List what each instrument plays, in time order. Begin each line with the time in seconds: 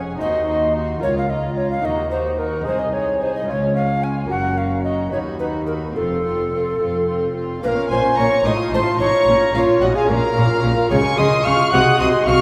Already playing: double bass section F1, cello section F2, lute G#3 C#4 C#5, viola section C#4, violin section G#4 G#5
0.17 double bass section D#2, cello section D#2, lute D#2 D#4 C5, viola section D#4, recorder D#5, violin section C6
0.21 violin section F#4
0.47 viola section D#4, violin section F#4 C6
0.74 viola section D#4, violin section F#4 C6
0.99 double bass section C#2, cello section C#2, lute F4 A#4, viola section F4, violin section F4 A#5, recorder C#5
1.18 recorder F5
1.28 viola section F4, violin section F4 A#5, recorder D#5
1.55 viola section F4, violin section F4 A#5, recorder C#5
1.71 recorder F5
1.81 cello section D#2, double bass section D#2, lute D#2 D#4 A#4, viola section D#4, violin section F#4 A#5, recorder D#5
2.10 viola section D#4, violin section F#4 A#5, recorder C5
2.38 viola section D#4, violin section F#4 A#5, recorder A#4
2.61 lute G#3 D#4 G#4
2.66 cello section C2, double bass section C2, viola section D#4, violin section G#4 G#5, recorder C5
2.79 recorder D#5
2.93 viola section D#4, violin section G#4 G#5, recorder C#5
3.20 viola section D#4, violin section G#4 G#5, recorder C5
3.35 recorder D#5
3.43 lute G#3 C#4 F4
3.47 double bass section C#2, cello section C#2, viola section C#4, violin section F4 G#5, recorder C#5
3.74 viola section C#4, violin section F4 G#5, recorder F5
4.02 viola section C#4, violin section F4 G#5, recorder G#5
4.26 double bass section F#1, lute A#3 C#4 F#4, violin section F#4 A#5
4.30 lute F#2, cello section F#2, viola section C#4, recorder F#5
4.57 viola section C#4, violin section F#4 A#5, recorder F5
4.84 viola section C#4, violin section F#4 A#5, recorder D#5
5.09 double bass section D#2, cello section D#2, lute B3 D#4 F#4, viola section D#4, violin section F#4 B5, recorder C#5
5.14 lute D#2
5.39 viola section D#4, violin section F#4 B5, recorder B4
5.67 viola section D#4, violin section F#4 B5, recorder A#4
5.92 double bass section F1, lute C4 F4, recorder A4, violin section C6
5.96 lute F2, cello section F2, viola section C4, violin section F4
6.23 viola section C4, violin section F4 C6
6.51 viola section C4, violin section F4 C6
6.79 double bass section F1, cello section F2, lute F2, viola section C4, violin section F4 C6
7.08 viola section C4, violin section F4 C6
7.34 viola section C4, violin section F4 C6
7.62 double bass section A#1, lute A#2 A#3 C#4 F4, cello section A#2, viola section A#3, recorder B4, violin section F5 A#5
7.68 recorder A#4
7.77 viola section C#4
7.89 double bass section A#1, cello section A#2, lute A#2, viola section A#3, recorder C5, violin section G#5 C6
8.03 viola section C#4
8.17 double bass section A#1, cello section A#2, lute A#2, viola section A#3, recorder C#5, violin section A#5 C#6
8.31 viola section C#4
8.44 double bass section A1, lute A2 C4 F4, cello section A2, viola section D#4, recorder D#5, violin section C6 D#6
8.59 viola section F4
8.71 double bass section A1, cello section A2, lute A2, viola section D#4, recorder C5, violin section A5 C6
8.85 viola section F4
8.98 double bass section A1, cello section A2, lute A2, viola section D#4, recorder C#5, violin section A#5 C#6
9.13 viola section F4
9.26 double bass section A#1, cello section A#2, lute A#2, viola section C#4
9.41 viola section F4
9.54 double bass section A#1, cello section A#2, lute A#2, viola section C#4, recorder F4, violin section C#5 F5
9.68 viola section F4
9.81 double bass section A#1, lute A#2, cello section A#2, viola section C#4, recorder F#4, violin section D#5 F#5
9.94 viola section F4, recorder G#4, violin section F5 G#5
10.08 double bass section A#1, lute A#2 A#3 C#4 F4, cello section A#2, viola section C#4, recorder A#4, violin section F5 A#5
10.21 viola section F4
10.36 double bass section A#1, lute A#2, cello section A#2, viola section C#4
10.49 viola section F4
10.63 double bass section A#1, cello section A#2, lute A#2, viola section C#4
10.76 viola section F4
10.90 double bass section C#2, cello section C#3, lute C#3 G#3 C#4 F4, viola section G#4, recorder C#5, violin section G#5 C#6
11.04 viola section F4
11.18 double bass section C#2, cello section C#3, lute C#3, viola section G#4, recorder D#5, violin section C6 D#6
11.32 viola section F4
11.45 double bass section C#2, lute C#3, cello section C#3, viola section G#4, recorder F5, violin section C#6 F6
11.59 viola section F4
11.71 double bass section C2, lute C3 G#3 D#4 G#4, cello section C3, viola section F#4, recorder F#5, violin section D#6 F#6
11.86 viola section G#4
11.99 double bass section C2, cello section C3, lute C3, viola section F#4, recorder D#5, violin section C6 D#6
12.13 viola section G#4
12.27 double bass section C2, cello section C3, lute C3, viola section F#4, recorder F5, violin section C#6 F6